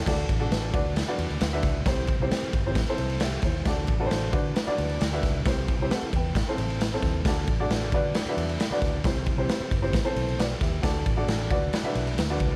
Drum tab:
CC |x---------------|----------------|----------------|----------------|
RD |--x-x-x-x-xxx-x-|x-x-x-x-xxxxx-x-|x-x-x-x-xxxxx-x-|x-x-x-x-x-xxx-x-|
SD |o---o---o---o-o-|o---o---o---o-o-|o---o---o---o-o-|o---o---o---o-o-|
BD |o-o---o-------o-|o-o---o-o-----o-|o-o---o-------o-|o-o---o-o-----o-|

CC |----------------|----------------|----------------|
RD |x-x-x-x-xxxxx-x-|x-x-x-x-xxxxx-x-|x-x-x-x-x-xxx-x-|
SD |o---o---o---o-o-|o---o---o---o-o-|o---o---o---o---|
BD |o-o---o-------o-|o-o---o-o-----o-|o-o---o-------o-|